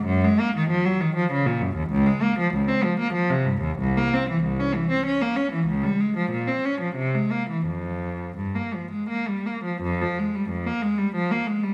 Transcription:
X:1
M:3/4
L:1/16
Q:1/4=94
K:Ebdor
V:1 name="Cello" clef=bass
G,, A, B, E, F, G, E, F, D, B,, G,, E,, | [K:Fm] D,, A, B, F, D,, C F, B, F, C, G,, E,, | C,, B, C =E, C,, D E, C D B, D E, | D,, G, A, F, B,, C D F, C, A, B, =E, |
F,,4 G,, B, F, A, B, G, B, F, | F,, F, A, G, F,, B, A, G, F, B, A, G, |]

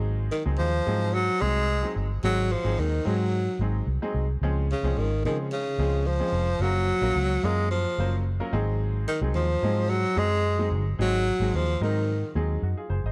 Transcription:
X:1
M:4/4
L:1/16
Q:1/4=110
K:Abmix
V:1 name="Upright piano"
[G,A,CEA]2 z [G,A,CEA]2 z [G,A,CEA]2 z2 [G,A,CEA]2 z [G,A,CEA]2 z | [G,A,CEA]2 z [G,A,CEA]2 z [G,A,CEA]2 z2 [G,A,CEA]2 z [G,A,CEA]2 z | [F,A,CDA]2 z [F,A,CDA]2 z [F,A,CDA]2 z2 [F,A,CDA]2 z [F,A,CDA]2 z | [G,B,DFB]2 z [G,B,DFB]2 z [G,B,DFB]2 z2 [G,B,DFc]2 z [G,B,DFB] [G,A,CEA]2- |
[G,A,CEA]2 z [G,A,CEA]2 z [G,A,CEA]2 z2 [G,A,CEA]2 z [G,A,CEA]2 z | [G,A,CEA]2 z [G,A,CEA]2 z [G,A,CEB]2 z2 [G,A,CEA]2 [EG] [FA] [Ac] [ce] |]
V:2 name="Tenor saxophone" clef=bass
z2 E,2 F,4 G,2 A,4 z2 | G,2 F,2 E,2 G,4 z6 | z2 D,2 E,2 E,2 D,4 F,4 | G,6 A,2 F,4 z4 |
z2 E,2 F,4 G,2 A,4 z2 | G,4 F,2 E,4 z6 |]
V:3 name="Fingered electric bass" clef=bass
A,,,3 D,, E,,2 A,,4 C,,4 =G,,,2 | A,,,3 A,,, E,,2 A,,4 A,,,2 C,, z C,,2 | D,,3 C,, A,,,2 D,4 D,,4 F,,,2 | G,,,3 B,,, D,,2 G,,4 G,,,4 A,,,2- |
A,,,3 C,, E,,2 A,,4 G,,4 =G,,,2 | A,,,3 A,,, E,,2 A,,4 E,,2 G,, z G,,, A,,, |]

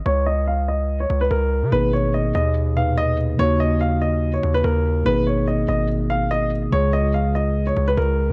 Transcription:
X:1
M:4/4
L:1/16
Q:1/4=144
K:G#dor
V:1 name="Grand piano"
c2 d2 e2 d3 c2 B A4 | B2 c2 d2 d2 z2 e2 d2 z2 | c2 d2 e2 d3 c2 B A4 | B2 c2 d2 d2 z2 e2 d2 z2 |
c2 d2 e2 d3 c2 B A4 |]
V:2 name="Tine electric piano"
z16 | [B,,A,DG]8- [B,,A,DG]2 [A,,B,,DB]6 | [C,A,DF]16 | [B,,A,DG]16 |
[C,G,EG]16 |]
V:3 name="808-style bass" clef=bass
C,,8- C,,2 C,,2 C,,3 C, | G,,,6 D,,8- D,,2 | D,,8- D,,2 D,,2 D,,4 | G,,,6 G,,,8- G,,,2 |
C,,8- C,,2 C,,2 C,,3 C, |]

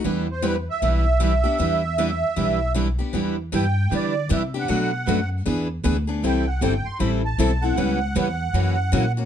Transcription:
X:1
M:4/4
L:1/16
Q:"Swing" 1/4=156
K:Em
V:1 name="Accordion"
z2 c2 B2 e8- e2- | e12 z4 | z4 g4 d4 e2 f2- | f6 z8 z2 |
g2 f2 g2 c'2 b2 a4 f2- | f12- f2 z2 |]
V:2 name="Steel-string acoustic guitar"
[E,G,DEB]2 z2 [E,G,DEB] z3 [E,G,DEB]2 z2 [E,G,DEB] z3 | [E,G,DEB]2 z2 [E,G,DEB] z3 [E,G,DEB]2 z2 [E,G,DEB] z3 | [E,G,DEB]2 z2 [E,G,DEB] z3 [E,G,DEB]2 z2 [E,G,DEB] z3 | [B,,F,A,DFB]2 z2 [B,,F,A,DFB] z3 [E,B,D^GB]2 z2 [E,B,DGB] z3 |
[E,G,CEA]2 z2 [E,G,CEA] z3 [E,G,CEA]2 z2 [E,G,CEA] z3 | [^C,G,B,EB]2 z2 [C,G,B,EB] z3 [F,^CE^A]2 z2 [F,CEA] z3 |]
V:3 name="Steel-string acoustic guitar"
[E,B,DG]2 z2 [E,B,DG] z3 [E,B,DG]2 z2 [E,B,DG] z [B,DG]2 | [E,B,DG]2 z2 [E,B,DG] z3 [E,B,DG]2 z2 [E,B,DG] z [B,DG]2 | [E,B,DG]2 z2 [E,B,DG] z3 [E,B,DG]2 z2 [E,B,DG] z [B,DG]2 | [B,,F,A,DF]2 z2 [B,,F,A,DF] z3 [E,B,D^G]2 z2 [E,B,DG] z [B,DG]2 |
[E,G,CEA]2 z2 [E,G,CEA] z3 [E,G,CEA]2 z2 [E,G,CEA] z [CEA]2 | [^C,E,B,^CG]2 z2 [C,E,B,CG] z3 [C,E,^A,CF]2 z2 [C,E,A,CF] z [A,CF]2 |]
V:4 name="Upright bass" clef=bass
E,,8 B,,,8 | E,,8 B,,,8 | E,,4 G,,4 D,4 C,4 | B,,4 F,,4 E,,4 D,,4 |
C,,4 G,,,2 z2 A,,,4 B,,,4 | ^C,,4 E,,4 F,,4 ^A,,4 |]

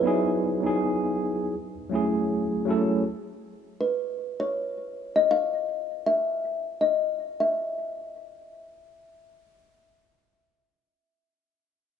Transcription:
X:1
M:4/4
L:1/16
Q:"Swing 16ths" 1/4=80
K:F#dor
V:1 name="Kalimba"
B8- B3 z4 z | z4 B3 c4 d =f4 | e4 d3 e4- e z4 | z16 |]
V:2 name="Tine electric piano"
[F,B,DEG]2 z [F,B,DEG]4 z3 [F,A,CEG]2 z2 [F,A,CEA] z | z16 | z16 | z16 |]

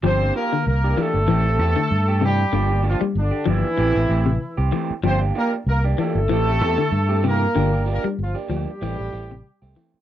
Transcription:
X:1
M:4/4
L:1/16
Q:"Swing 16ths" 1/4=96
K:Gdor
V:1 name="Horn section"
[Cc]2 [B,B]2 [B,B]2 [A,A]8 [G,G]2- | [G,G]2 [F,F]2 [D,D]2 [E,E]8 z2 | [Cc]2 [B,B]2 [B,B]2 [A,A]8 [B,B]2- | [B,B]2 [B,B]2 [F,F]2 [G,G]8 z2 |]
V:2 name="Clean electric guitar"
[F,DG] [B,DG] [F,B,G] z2 [B,DG] [F,B,DG] z [E,A,CG] [A,CG] [E,A,CG] z2 [A,G] [E,A,CG] z | [F,B,DG] [B,DG] [F,B,DG] z2 [DG] [F,B,DG] z [E,A,CG] [A,CG] [A,CG] z2 [CG] [E,A,CG] z | [F,B,DG] [B,DG] [F,B,DG] z2 [B,DG] [F,B,DG] z [E,A,CG] [A,CG] [E,A,CG] z2 [A,CG] [E,A,CG] z | [F,B,DG] [B,DG] [F,B,DG] z2 [B,DG] [F,B,DG] z [E,A,CG] [A,CG] [E,A,CG] z2 [A,CG] [E,A,C] z |]
V:3 name="Clean electric guitar" clef=bass
F,2 z D,2 z E,2 E,2 z D,2 z C,2 | D,2 z G,2 z F,2 z3 C,2 z E,2 | F,2 z4 E,2 E,2 z D,2 z C,2 | D,2 z G,2 z F,2 E,2 z C,2 z E,2 |]
V:4 name="Fingered electric bass" clef=bass
G,,,2 z2 C,,2 z G,,, A,,,2 E,, z G,,4 | G,,,3 z G,,, z G,,, z A,,, A,,, A,,,2 z C,, z2 | G,,,2 z2 C,,2 z G,,, A,,,2 E,, z G,,4 | G,,,3 z G,,, z D,, z A,,, A,,, A,,,2 z C,, z2 |]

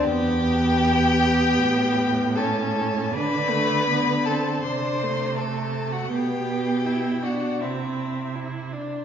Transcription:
X:1
M:4/4
L:1/16
Q:1/4=80
K:Dmix
V:1 name="Violin"
g12 a4 | b6 a2 c'4 a3 f | g6 f2 e4 z4 |]
V:2 name="Violin"
G12 A4 | B6 A2 c4 A3 F | G6 F2 E4 z4 |]
V:3 name="Viola"
B,2 B,8- B,2 ^C4 | D2 A,2 B,2 C2 D2 A,6 | B,4 E2 D2 C4 E2 D2 |]
V:4 name="Cello" clef=bass
E,,8 A,,8 | D,8 C,8 | B,,8 C,8 |]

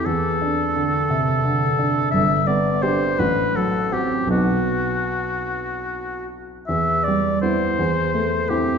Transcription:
X:1
M:6/8
L:1/8
Q:3/8=56
K:Bphr
V:1 name="Oboe"
A6 | e d c B A G | F4- F z | e d c3 G |]
V:2 name="Grand piano"
E,, D D, C, D, D | G,,, B, [DG] A,,, F, [CF] | [B,,,F,B,^D]6 | E,, G, [B,E] E,, A, [CE] |]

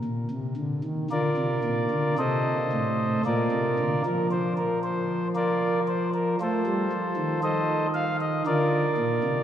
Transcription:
X:1
M:3/4
L:1/16
Q:1/4=57
K:Bb
V:1 name="Pipe organ"
z4 [FBd]4 [Ace]4 | [FBd]3 B c B c2 [FBd]2 c B | [FAc]4 [Ace]2 f e [FBd]4 |]
V:2 name="Pipe organ" clef=bass
B,, C, D, E, D, C, B,, D, C,2 A,,2 | B,, C, D, F,8- F, | A, G, F, E,4- E, D,2 B,, C, |]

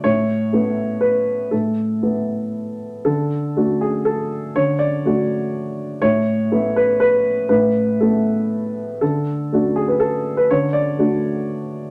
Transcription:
X:1
M:3/4
L:1/16
Q:1/4=121
K:Dlyd
V:1 name="Upright piano"
c8 B4 | A8- A2 z2 | A6 G2 A4 | c2 d8 z2 |
c6 B2 B4 | B4 A6 z2 | A6 G B A3 B | c2 d8 z2 |]
V:2 name="Upright piano"
A,,4 [A,B,E]8 | A,,4 [A,B,E]8 | D,4 [A,DF]8 | D,4 [A,DF]8 |
A,,4 [A,B,E]8 | A,,4 [A,B,E]8 | D,4 [A,DF]8 | D,4 [A,DF]8 |]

